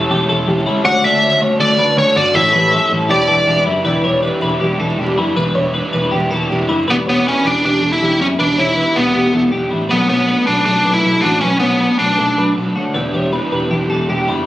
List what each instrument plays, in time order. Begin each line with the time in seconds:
Already playing: overdriven electric guitar E4 A4, synth keys E4 G4 A4 C#5, clean electric guitar A4
0.10 picked electric bass E1, overdriven electric guitar G3 C#4 E4 A4, clean electric guitar G4
0.28 picked electric bass E1, overdriven electric guitar C#4 E4 A4, clean electric guitar A4
0.47 picked electric bass E1, overdriven electric guitar E3 G3 C#4 E4 A4, clean electric guitar G4
0.65 picked electric bass C#2, overdriven electric guitar C#4 E4 A4, clean electric guitar E4
0.83 picked electric bass D2, overdriven electric guitar D3 A3 C#4 F#4 A4, synth keys D4 F#4 A4 D5, clean electric guitar C#5, lead electric guitar F#5
1.02 picked electric bass D2, overdriven electric guitar C#4 F#4 A4, clean electric guitar D5, lead electric guitar E5
1.21 overdriven electric guitar D3 A3 C#4 F#4 A4, clean electric guitar C#5
1.40 picked electric bass D2, overdriven electric guitar C#4 F#4 A4, clean electric guitar C#5
1.58 picked electric bass D2, overdriven electric guitar A3 C#4 F#4 A4, clean electric guitar A4, lead electric guitar D5
1.78 picked electric bass D2, overdriven electric guitar C#4 F#4 A4, clean electric guitar B4
1.97 picked electric bass D2, overdriven electric guitar D3 A3 C#4 F#4 A4, clean electric guitar A4, lead electric guitar C#5
2.16 picked electric bass G1, clean electric guitar F#4, overdriven electric guitar F#4 A4, lead electric guitar D5
2.20 overdriven electric guitar C#4
2.34 picked electric bass A1, overdriven electric guitar A2 E3 G3 C#4 E4 A4, synth keys E4 G4 A4 C#5, clean electric guitar A4, lead electric guitar E5
2.53 picked electric bass A1, overdriven electric guitar G3 C#4 E4 A4, clean electric guitar B4
2.72 overdriven electric guitar A2 E3 G3 C#4 E4 A4, clean electric guitar A4
2.90 picked electric bass A1, overdriven electric guitar G3 C#4 E4 A4, clean electric guitar A4
3.08 picked electric bass E1, overdriven electric guitar G3 D4 E4 B4, synth keys E4 G4 B4 D5, clean electric guitar G4, lead electric guitar D5
3.28 picked electric bass E1, overdriven electric guitar D4 E4 B4, clean electric guitar A4
3.46 picked electric bass E1, overdriven electric guitar E3 G3 D4 E4 B4, clean electric guitar G4
3.66 picked electric bass F#1, overdriven electric guitar D4 E4 B4, clean electric guitar E4
3.84 picked electric bass E1, overdriven electric guitar E3 G3 D4 E4 B4, synth keys E4 G4 D5, clean electric guitar B4
4.03 picked electric bass E1, overdriven electric guitar D4 E4 B4, clean electric guitar C#5
4.23 overdriven electric guitar E3 G3 D4 E4 B4, clean electric guitar B4
4.41 picked electric bass E1, overdriven electric guitar D4 E4 B4, clean electric guitar B4
4.61 picked electric bass E1, overdriven electric guitar G3 D4 E4 B4, clean electric guitar G4
4.79 picked electric bass E1, overdriven electric guitar D4 E4 B4, clean electric guitar A4
4.98 picked electric bass E1, overdriven electric guitar E3 G3 D4 E4 B4, clean electric guitar G4
5.17 picked electric bass F#1, overdriven electric guitar D4 E4 B4, clean electric guitar E4
5.36 picked electric bass E1, overdriven electric guitar E3 G3 D4 E4 B4, clean electric guitar B4
5.55 picked electric bass E1, overdriven electric guitar D4 E4 B4, clean electric guitar C#5
5.74 overdriven electric guitar E3 G3 D4 E4 B4, clean electric guitar B4
5.93 picked electric bass E1, overdriven electric guitar D4 E4 B4, clean electric guitar B4
6.11 picked electric bass E1, overdriven electric guitar G3 D4 E4, clean electric guitar G4
6.16 overdriven electric guitar B4
6.31 picked electric bass E1, overdriven electric guitar D4 E4 B4, clean electric guitar A4
6.49 picked electric bass E1, overdriven electric guitar E3 G3 D4 E4 B4, clean electric guitar G4
6.69 picked electric bass F#1, overdriven electric guitar D4 E4 B4, clean electric guitar E4
6.87 picked electric bass E1, overdriven electric guitar E3 B3 D4 G4, lead electric guitar B3, synth keys E4 G4 D5, clean electric guitar B4
7.07 picked electric bass E1, lead electric guitar B3, overdriven electric guitar B3 D4 G4, clean electric guitar C#5
7.26 overdriven electric guitar E3 B3 D4 G4, lead electric guitar C#4, clean electric guitar B4
7.44 picked electric bass E1, overdriven electric guitar B3 D4 G4, lead electric guitar D4, clean electric guitar B4
7.62 picked electric bass E1, overdriven electric guitar E3 B3 D4 G4, lead electric guitar D4, clean electric guitar G4
7.82 picked electric bass E1, overdriven electric guitar B3 D4 G4, clean electric guitar A4
7.93 lead electric guitar E4
8.01 picked electric bass E1, overdriven electric guitar E3 B3 D4 G4, clean electric guitar G4
8.20 picked electric bass F#1, overdriven electric guitar B3 D4 G4, lead electric guitar C#4, clean electric guitar E4
8.38 picked electric bass E1, overdriven electric guitar E3 B3 D4 G4, lead electric guitar D4, clean electric guitar B4
8.58 picked electric bass E1, overdriven electric guitar B3 D4 G4, lead electric guitar E4, clean electric guitar C#5
8.76 overdriven electric guitar E3 B3 D4 G4, clean electric guitar B4
8.94 picked electric bass E1, lead electric guitar B3, overdriven electric guitar B3 D4 G4, clean electric guitar B4
9.12 picked electric bass E1, overdriven electric guitar E3 B3 D4 G4, clean electric guitar G4
9.33 picked electric bass E1, overdriven electric guitar B3 D4 G4, synth keys E4 G4 E5, clean electric guitar A4
9.52 picked electric bass E1, overdriven electric guitar E3 B3 D4 G4, clean electric guitar G4
9.71 picked electric bass A1, overdriven electric guitar B3 D4 G4, clean electric guitar E4
9.89 picked electric bass B1, overdriven electric guitar B2 F#3 A3 D4 F#4, lead electric guitar B3, synth keys D4 A4 B4, clean electric guitar B4
10.08 picked electric bass B1, overdriven electric guitar A3 D4 F#4, lead electric guitar B3, clean electric guitar C#5
10.27 overdriven electric guitar B2 F#3 A3 D4 F#4, clean electric guitar B4
10.46 picked electric bass B1, overdriven electric guitar A3 D4 F#4, lead electric guitar D4, clean electric guitar B4
10.65 picked electric bass B1, overdriven electric guitar F#3 A3 D4 F#4, lead electric guitar D4, clean electric guitar A4
10.85 picked electric bass B1, overdriven electric guitar A3 D4 F#4, clean electric guitar B4
10.93 lead electric guitar E4
11.03 picked electric bass B1, overdriven electric guitar B2 F#3 A3 D4 F#4, clean electric guitar A4
11.21 picked electric bass A1, lead electric guitar D4, overdriven electric guitar D4 F#4, clean electric guitar F#4
11.26 overdriven electric guitar A3
11.41 picked electric bass B1, overdriven electric guitar B2 F#3 A3 D4 F#4, lead electric guitar C#4, clean electric guitar B4
11.60 picked electric bass B1, overdriven electric guitar A3 D4 F#4, lead electric guitar B3, clean electric guitar C#5
11.80 overdriven electric guitar B2 F#3 A3 D4 F#4, clean electric guitar B4
11.98 picked electric bass B1, overdriven electric guitar A3 D4 F#4, lead electric guitar D4, clean electric guitar B4
12.17 picked electric bass B1, overdriven electric guitar F#3 A3 D4 F#4, clean electric guitar A4
12.37 picked electric bass B1, overdriven electric guitar A3 D4 F#4, clean electric guitar B4
12.56 picked electric bass B1, overdriven electric guitar B2 F#3 A3 D4 F#4, clean electric guitar A4
12.76 picked electric bass D2, overdriven electric guitar A3 D4 F#4, synth keys D4 A4 C#5, clean electric guitar F#4
12.94 picked electric bass E1, overdriven electric guitar E3 B3 D4 G4, synth keys D4 E4 G4, clean electric guitar B4
13.13 picked electric bass E1, overdriven electric guitar B3 D4 G4, clean electric guitar C#5
13.33 overdriven electric guitar E3 B3 D4 G4, clean electric guitar B4
13.52 picked electric bass E1, overdriven electric guitar B3 D4 G4, clean electric guitar B4
13.71 picked electric bass E1, overdriven electric guitar E3 B3 D4, clean electric guitar G4
13.75 overdriven electric guitar G4
13.90 picked electric bass E1, overdriven electric guitar B3 D4 G4, clean electric guitar A4
14.08 picked electric bass E1, overdriven electric guitar E3 B3 D4 G4, clean electric guitar G4
14.27 picked electric bass F#1, overdriven electric guitar B3 D4 G4, clean electric guitar E4